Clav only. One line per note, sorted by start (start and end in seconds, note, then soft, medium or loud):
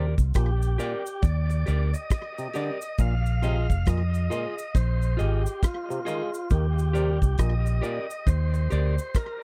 0.35 0.50 A#2 medium
0.79 0.94 A#2 medium
2.38 2.47 C3 medium
2.55 2.70 D3 medium
2.99 3.14 A#2 medium
3.43 3.58 C3 medium
3.87 4.02 A#2 medium
4.30 4.46 A#2 medium
5.90 5.99 C3 medium
6.07 6.22 D#3 medium
6.51 6.66 D#3 medium
6.95 7.10 C3 medium
7.39 7.54 A#2 medium
7.83 7.98 A#2 medium